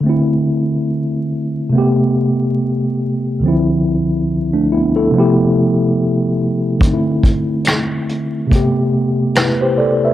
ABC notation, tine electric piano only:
X:1
M:4/4
L:1/16
Q:"Swing 16ths" 1/4=71
K:C
V:1 name="Tine electric piano"
z16 | z4 z [A,D] [B,E] [EA]2 z6 z | z12 [EB] [Gc] [Ad] [Be] |]
V:2 name="Tine electric piano"
[D,A,CE]8 [C,A,B,G]8 | [C,,D,F,CE]8 [C,F,A,B,EG]8 | [D,A,C_E=E]8 [C,A,B,G]8 |]